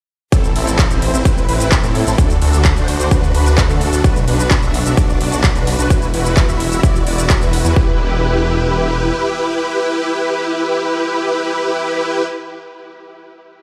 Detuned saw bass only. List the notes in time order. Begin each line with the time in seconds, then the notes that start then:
0.32 A1
0.55 A1
0.90 A1
1.14 A1
1.25 A1
1.48 A1
1.83 A2
2.07 A1
2.18 D2
2.41 D2
2.76 D2
3.00 D2
3.11 D2
3.34 D2
3.69 D2
3.93 D2
4.04 B1
4.28 B1
4.62 B1
4.86 B1
4.97 B1
5.21 B1
5.56 B1
5.79 B1
5.90 E1
6.14 E1
6.48 E1
6.72 E1
6.83 E1
7.07 E1
7.42 E1
7.65 E2
7.76 E1